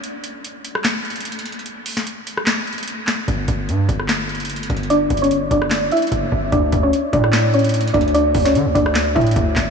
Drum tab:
HH |x-----------x-----------x-----------x-----------x-----------x--x--x--x--x---x---x---x---x---x---|x-----------o-----------x-----------x-----------x-----------x--x--x--x--x-----------------------|x-----------x-----------x-----------x-----------x-----------x--x--x--x--x---x---x---x---x---x---|x-----------x---x---x---x-----------x-----------x-----------x--x--x--x--x-----------------------|
CP |------------------------------------------------x-----------------------------------------------|------------------------------------------------x-----------------------------------x-----------|------------------------------------------------x-----------------------------------------------|------------------------------------------------x-----------------------------------------------|
SD |------------------------------------------r-----o-----------------------------------------------|------------------o-----------------------r-----o-----------------------------------o-----------|------------------------------------------r-----o-----------------------------------------------|------------------------------------------r-----o-----------------------------------------------|
BD |------------------------------------------------------------------------------------------------|------------------------------------------------------------------------------------------------|o-----------o-----------------------o-----------------------------------------------o-----------|------------o-----------------------o-----------------------------------o-----------o-----------|

HH |x-----------x-----------x-----------x-----------x-----------x--x--x--x--x---x---x---x---x---x---|x-----------o-----------x-----------x-----------x-----------x--x--x--x--x-----------------------|
CP |------------------------------------------------x-----------------------------------------------|------------------------------------------------x-----------------------------------x-----------|
SD |------------------------------------------r-----o-----------------------------------------------|------------------o-----------------------r-----o-----------------------------------o-----------|
BD |o-----------o-----------------------o-----------------------------------------------o-----------|------------o-----------------------o-----------------------o-----------o-----------o-----------|